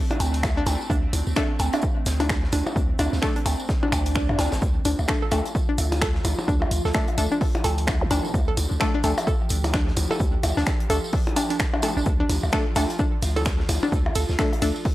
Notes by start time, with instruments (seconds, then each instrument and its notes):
Already playing: synth texture A3 C4
0.11 synth arpeggio sound D4, closed hi-hat, percussion blips
0.20 sub bass D2, open hi-hat, tambourine, percussion blips, shaker
0.34 open hi-hat, tambourine
0.43 finger snap, kick, snare, tambourine, percussion blips, shaker
0.57 synth arpeggio sound D4
0.66 sub bass D2, open hi-hat, tambourine, percussion blips, shaker
0.81 tambourine
0.90 sub bass D2, synth arpeggio sound D4, kick, tambourine, percussion blips, shaker
1.13 sub bass D2, open hi-hat, tambourine, percussion blips, shaker
1.27 sub bass D2, tambourine
1.36 synth stab A3 D4 A4, synth arpeggio sound D4, finger snap, kick, snare, percussion blips, shaker
1.59 sub bass D2, open hi-hat, tambourine, percussion blips, shaker
1.73 synth arpeggio sound D4, closed hi-hat, tambourine, percussion blips
1.82 kick, tambourine, shaker
2.06 sub bass D2, snare, open hi-hat, tambourine, shaker
2.20 synth arpeggio sound D4, open hi-hat, tambourine, percussion blips
2.29 finger snap, kick, snare, tambourine, shaker
2.44 snare
2.52 sub bass D2, synth arpeggio sound D4, open hi-hat, tambourine, percussion blips, shaker
2.67 tambourine, percussion blips
2.76 sub bass D2, kick, tambourine, shaker
2.99 sub bass D2, synth arpeggio sound D4, open hi-hat, tambourine, percussion blips, shaker
3.13 sub bass D2, snare, tambourine
3.22 synth stab A3 D4 A4, finger snap, kick, snare, tambourine, shaker
3.36 synth arpeggio sound D4, closed hi-hat
3.46 sub bass D2, open hi-hat, tambourine, percussion blips, shaker
3.60 tambourine
3.69 kick, snare, tambourine, swell, shaker
3.83 synth arpeggio sound D4, percussion blips
3.92 sub bass D2, finger snap, kick, open hi-hat, tambourine, percussion blips, shaker
4.06 closed hi-hat, open hi-hat, tambourine
4.15 synth arpeggio sound D4, finger snap, kick, tambourine, shaker
4.29 sub bass G2, percussion blips
4.39 sub bass D2, snare, open hi-hat, tambourine, percussion blips, shaker
4.52 sub bass A1, snare, tambourine, shaker
4.61 sub bass D2, synth texture F3 F4, kick, tambourine, shaker
4.85 sub bass D2, synth arpeggio sound D4, open hi-hat, tambourine, percussion blips, shaker
4.99 sub bass D2, tambourine, percussion blips
5.08 synth stab A3 D4 A4, finger snap, kick, snare, tambourine, shaker
5.22 synth arpeggio sound A4
5.31 sub bass D2, synth stab A3 D4 A4, open hi-hat, tambourine, percussion blips, shaker
5.45 closed hi-hat, tambourine
5.55 kick, tambourine, shaker
5.69 synth arpeggio sound D4
5.78 sub bass D2, open hi-hat, tambourine, percussion blips, shaker
5.92 open hi-hat, tambourine, percussion blips
6.01 synth arpeggio sound A4, finger snap, kick, snare, tambourine, shaker
6.15 snare
6.24 sub bass D2, open hi-hat, tambourine, percussion blips, shaker
6.39 tambourine, percussion blips
6.48 sub bass D2, synth arpeggio sound D4, kick, tambourine, shaker
6.62 percussion blips
6.71 sub bass D2, open hi-hat, tambourine, shaker
6.85 sub bass D2, synth arpeggio sound A4, snare, tambourine
6.94 synth stab A3 D4 A4, finger snap, kick, snare, tambourine, shaker
7.08 closed hi-hat, percussion blips
7.18 sub bass D2, synth stab A3 D4 A4, open hi-hat, tambourine, shaker
7.32 synth arpeggio sound D4, tambourine
7.41 kick, open hi-hat, tambourine
7.55 closed hi-hat, percussion blips
7.64 sub bass D2, synth arpeggio sound A4, open hi-hat, tambourine, percussion blips, shaker
7.78 open hi-hat, tambourine
7.87 finger snap, kick, snare, tambourine, percussion blips, shaker
8.01 zap
8.10 sub bass D2, synth arpeggio sound D4, open hi-hat, tambourine, percussion blips, shaker
8.25 tambourine
8.34 sub bass D2, synth texture G4, kick, tambourine, percussion blips, shaker
8.48 synth arpeggio sound A4
8.57 sub bass D2, open hi-hat, tambourine, percussion blips, shaker
8.71 sub bass D2, tambourine
8.80 synth stab A3 D4 A4, finger snap, kick, snare, tambourine, percussion blips, shaker
8.94 synth arpeggio sound D4
9.04 sub bass D2, synth stab A3 D4 A4, open hi-hat, tambourine, percussion blips, shaker
9.17 closed hi-hat, tambourine, percussion blips
9.27 synth arpeggio sound A4, kick, tambourine, shaker
9.49 sub bass D2, open hi-hat, tambourine, shaker
9.64 open hi-hat, tambourine, percussion blips
9.74 synth arpeggio sound D4, finger snap, kick, snare, tambourine, shaker
9.88 snare
9.96 sub bass D2, open hi-hat, tambourine, percussion blips, shaker
10.11 synth arpeggio sound A4, tambourine, percussion blips
10.19 sub bass D2, kick, tambourine, shaker
10.43 sub bass D2, open hi-hat, tambourine, percussion blips, shaker
10.57 sub bass D2, synth arpeggio sound D4, snare, tambourine
10.66 finger snap, kick, snare, open hi-hat, tambourine, shaker
10.80 closed hi-hat
10.90 sub bass D2, synth stab A3 D4 A4, synth arpeggio sound A4, open hi-hat, tambourine, percussion blips, shaker
11.04 tambourine
11.13 kick, open hi-hat
11.27 closed hi-hat, percussion blips
11.36 synth arpeggio sound D4, open hi-hat, tambourine, percussion blips, shaker
11.50 synth arpeggio sound D4, open hi-hat, tambourine
11.59 finger snap, kick, snare, tambourine, shaker
11.74 synth arpeggio sound D4, percussion blips
11.82 synth stab A3 D4 A4, open hi-hat, tambourine, percussion blips, shaker
11.97 sub bass A1, synth arpeggio sound D4, tambourine
12.06 sub bass D2, synth texture F4, kick, shaker
12.20 synth arpeggio sound D4
12.29 sub bass D2, open hi-hat, ride, tambourine, percussion blips, shaker
12.43 sub bass D2, tambourine, percussion blips
12.52 synth stab A3 D4 A4, synth arpeggio sound A4, finger snap, kick, snare, tambourine, shaker
12.76 sub bass D2, synth stab A3 D4 A4, open hi-hat, ride, tambourine, percussion blips, shaker
12.90 closed hi-hat, tambourine
12.99 synth arpeggio sound D4, kick, tambourine, shaker
13.22 sub bass D2, open hi-hat, ride, tambourine, percussion blips, shaker
13.36 synth arpeggio sound A4, open hi-hat, tambourine, percussion blips
13.45 finger snap, kick, snare, tambourine, shaker
13.60 snare
13.69 sub bass D2, open hi-hat, ride, tambourine, percussion blips, shaker
13.83 synth arpeggio sound D4, tambourine, percussion blips
13.92 sub bass D2, kick, tambourine, shaker
14.06 percussion blips
14.15 sub bass D2, synth arpeggio sound A4, open hi-hat, ride, tambourine, shaker
14.29 sub bass D2, snare, tambourine
14.39 synth stab A3 D4 A4, finger snap, kick, snare, tambourine, shaker
14.53 closed hi-hat, percussion blips
14.62 sub bass D2, synth stab A3 D4 A4, synth arpeggio sound D4, open hi-hat, ride, tambourine, shaker
14.76 tambourine
14.85 kick, open hi-hat, tambourine